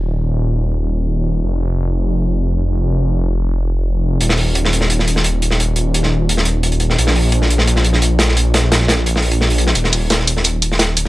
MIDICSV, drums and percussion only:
0, 0, Header, 1, 2, 480
1, 0, Start_track
1, 0, Tempo, 346821
1, 61, Time_signature, 4, 2, 24, 8
1, 15337, End_track
2, 0, Start_track
2, 0, Title_t, "Drums"
2, 5821, Note_on_c, 9, 42, 81
2, 5942, Note_on_c, 9, 38, 54
2, 5959, Note_off_c, 9, 42, 0
2, 6055, Note_on_c, 9, 46, 77
2, 6080, Note_off_c, 9, 38, 0
2, 6193, Note_off_c, 9, 46, 0
2, 6301, Note_on_c, 9, 42, 91
2, 6431, Note_on_c, 9, 38, 43
2, 6439, Note_off_c, 9, 42, 0
2, 6545, Note_on_c, 9, 42, 72
2, 6569, Note_off_c, 9, 38, 0
2, 6653, Note_on_c, 9, 38, 45
2, 6684, Note_off_c, 9, 42, 0
2, 6780, Note_on_c, 9, 42, 77
2, 6792, Note_off_c, 9, 38, 0
2, 6909, Note_on_c, 9, 38, 37
2, 6919, Note_off_c, 9, 42, 0
2, 7024, Note_on_c, 9, 42, 64
2, 7047, Note_off_c, 9, 38, 0
2, 7142, Note_on_c, 9, 38, 46
2, 7163, Note_off_c, 9, 42, 0
2, 7256, Note_on_c, 9, 42, 84
2, 7280, Note_off_c, 9, 38, 0
2, 7394, Note_off_c, 9, 42, 0
2, 7503, Note_on_c, 9, 42, 62
2, 7620, Note_on_c, 9, 38, 40
2, 7641, Note_off_c, 9, 42, 0
2, 7749, Note_on_c, 9, 42, 81
2, 7758, Note_off_c, 9, 38, 0
2, 7888, Note_off_c, 9, 42, 0
2, 7970, Note_on_c, 9, 42, 66
2, 8109, Note_off_c, 9, 42, 0
2, 8226, Note_on_c, 9, 42, 90
2, 8346, Note_on_c, 9, 38, 36
2, 8364, Note_off_c, 9, 42, 0
2, 8484, Note_off_c, 9, 38, 0
2, 8708, Note_on_c, 9, 42, 83
2, 8821, Note_on_c, 9, 38, 42
2, 8847, Note_off_c, 9, 42, 0
2, 8930, Note_on_c, 9, 42, 70
2, 8959, Note_off_c, 9, 38, 0
2, 9069, Note_off_c, 9, 42, 0
2, 9179, Note_on_c, 9, 42, 75
2, 9299, Note_off_c, 9, 42, 0
2, 9299, Note_on_c, 9, 42, 45
2, 9410, Note_off_c, 9, 42, 0
2, 9410, Note_on_c, 9, 42, 72
2, 9545, Note_on_c, 9, 38, 35
2, 9548, Note_off_c, 9, 42, 0
2, 9667, Note_on_c, 9, 42, 88
2, 9683, Note_off_c, 9, 38, 0
2, 9784, Note_on_c, 9, 38, 51
2, 9805, Note_off_c, 9, 42, 0
2, 9901, Note_on_c, 9, 46, 74
2, 9922, Note_off_c, 9, 38, 0
2, 10040, Note_off_c, 9, 46, 0
2, 10131, Note_on_c, 9, 42, 90
2, 10266, Note_on_c, 9, 38, 40
2, 10270, Note_off_c, 9, 42, 0
2, 10386, Note_on_c, 9, 42, 66
2, 10404, Note_off_c, 9, 38, 0
2, 10493, Note_on_c, 9, 38, 49
2, 10524, Note_off_c, 9, 42, 0
2, 10621, Note_on_c, 9, 42, 83
2, 10632, Note_off_c, 9, 38, 0
2, 10739, Note_on_c, 9, 38, 39
2, 10760, Note_off_c, 9, 42, 0
2, 10857, Note_on_c, 9, 42, 74
2, 10877, Note_off_c, 9, 38, 0
2, 10973, Note_on_c, 9, 38, 38
2, 10995, Note_off_c, 9, 42, 0
2, 11098, Note_on_c, 9, 42, 89
2, 11112, Note_off_c, 9, 38, 0
2, 11237, Note_off_c, 9, 42, 0
2, 11332, Note_on_c, 9, 38, 96
2, 11342, Note_on_c, 9, 42, 82
2, 11466, Note_off_c, 9, 38, 0
2, 11466, Note_on_c, 9, 38, 44
2, 11480, Note_off_c, 9, 42, 0
2, 11582, Note_on_c, 9, 42, 86
2, 11605, Note_off_c, 9, 38, 0
2, 11720, Note_off_c, 9, 42, 0
2, 11819, Note_on_c, 9, 42, 82
2, 11823, Note_on_c, 9, 38, 94
2, 11957, Note_off_c, 9, 42, 0
2, 11961, Note_off_c, 9, 38, 0
2, 12064, Note_on_c, 9, 38, 107
2, 12065, Note_on_c, 9, 42, 82
2, 12190, Note_off_c, 9, 38, 0
2, 12190, Note_on_c, 9, 38, 36
2, 12203, Note_off_c, 9, 42, 0
2, 12294, Note_off_c, 9, 38, 0
2, 12294, Note_on_c, 9, 38, 106
2, 12305, Note_on_c, 9, 42, 74
2, 12433, Note_off_c, 9, 38, 0
2, 12444, Note_off_c, 9, 42, 0
2, 12543, Note_on_c, 9, 42, 82
2, 12673, Note_on_c, 9, 38, 52
2, 12681, Note_off_c, 9, 42, 0
2, 12766, Note_on_c, 9, 46, 69
2, 12811, Note_off_c, 9, 38, 0
2, 12892, Note_on_c, 9, 42, 78
2, 12904, Note_off_c, 9, 46, 0
2, 13021, Note_on_c, 9, 38, 48
2, 13030, Note_off_c, 9, 42, 0
2, 13149, Note_on_c, 9, 46, 70
2, 13159, Note_off_c, 9, 38, 0
2, 13261, Note_on_c, 9, 42, 80
2, 13287, Note_off_c, 9, 46, 0
2, 13380, Note_on_c, 9, 38, 49
2, 13400, Note_off_c, 9, 42, 0
2, 13493, Note_on_c, 9, 42, 80
2, 13500, Note_off_c, 9, 42, 0
2, 13500, Note_on_c, 9, 42, 80
2, 13518, Note_off_c, 9, 38, 0
2, 13620, Note_on_c, 9, 38, 49
2, 13638, Note_off_c, 9, 42, 0
2, 13737, Note_on_c, 9, 46, 78
2, 13740, Note_on_c, 9, 42, 93
2, 13758, Note_off_c, 9, 38, 0
2, 13876, Note_off_c, 9, 46, 0
2, 13878, Note_off_c, 9, 42, 0
2, 13980, Note_on_c, 9, 42, 83
2, 13982, Note_on_c, 9, 38, 107
2, 13988, Note_off_c, 9, 42, 0
2, 13988, Note_on_c, 9, 42, 86
2, 14107, Note_off_c, 9, 38, 0
2, 14107, Note_on_c, 9, 38, 40
2, 14126, Note_off_c, 9, 42, 0
2, 14218, Note_on_c, 9, 42, 64
2, 14220, Note_off_c, 9, 42, 0
2, 14220, Note_on_c, 9, 42, 98
2, 14246, Note_off_c, 9, 38, 0
2, 14345, Note_on_c, 9, 38, 44
2, 14359, Note_off_c, 9, 42, 0
2, 14452, Note_on_c, 9, 42, 85
2, 14460, Note_off_c, 9, 42, 0
2, 14460, Note_on_c, 9, 42, 85
2, 14484, Note_off_c, 9, 38, 0
2, 14599, Note_off_c, 9, 42, 0
2, 14700, Note_on_c, 9, 42, 61
2, 14829, Note_on_c, 9, 38, 43
2, 14838, Note_off_c, 9, 42, 0
2, 14935, Note_off_c, 9, 38, 0
2, 14935, Note_on_c, 9, 38, 113
2, 14937, Note_on_c, 9, 42, 83
2, 14940, Note_off_c, 9, 42, 0
2, 14940, Note_on_c, 9, 42, 79
2, 15074, Note_off_c, 9, 38, 0
2, 15079, Note_off_c, 9, 42, 0
2, 15179, Note_on_c, 9, 42, 70
2, 15180, Note_off_c, 9, 42, 0
2, 15180, Note_on_c, 9, 42, 93
2, 15318, Note_off_c, 9, 42, 0
2, 15337, End_track
0, 0, End_of_file